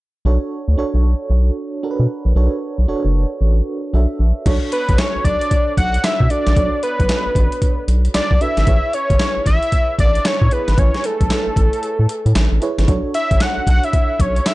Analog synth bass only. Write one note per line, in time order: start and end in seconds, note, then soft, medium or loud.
0.25 0.38 B1 loud
0.68 0.75 D2 medium
0.78 0.84 B1 medium
0.94 1.14 B1 medium
1.30 1.50 B1 medium
1.99 2.07 B2 medium
2.25 2.33 A#1 medium
2.35 2.48 B1 loud
2.78 2.86 B1 medium
2.88 2.95 F#1 soft
3.05 3.25 F#1 medium
3.41 3.61 A1 medium
3.93 4.06 B1 loud
4.19 4.32 A#1 loud
4.46 4.59 B1 loud
4.89 4.96 A1 medium
5.15 5.19 B1 soft
5.25 5.38 B1 medium
5.77 5.98 B1 medium
6.20 6.28 B2 medium
6.47 6.54 A#1 loud
6.57 6.69 B1 loud
7.00 7.07 B1 medium
7.26 7.30 A1 medium
7.35 7.48 A1 medium
7.88 8.08 B1 medium
8.14 8.21 B1 medium
8.31 8.38 B1 loud
8.57 8.65 G#1 medium
8.67 8.80 A1 loud
9.10 9.18 G#1 medium
9.36 9.40 A1 soft
9.46 9.59 A1 medium
9.99 10.19 A1 medium
10.41 10.49 A2 loud
10.68 10.76 G#1 medium
10.78 10.91 A1 loud
11.21 11.28 B1 medium
11.46 11.50 A1 soft
11.56 11.69 A1 medium
11.99 12.07 A2 loud
12.26 12.33 A2 loud
12.35 12.48 A1 medium
12.52 12.59 A1 medium
12.78 12.86 G#1 medium
12.88 13.01 B1 loud
13.31 13.39 A1 medium
13.57 13.61 B1 soft
13.67 13.80 B1 medium
14.20 14.40 B1 loud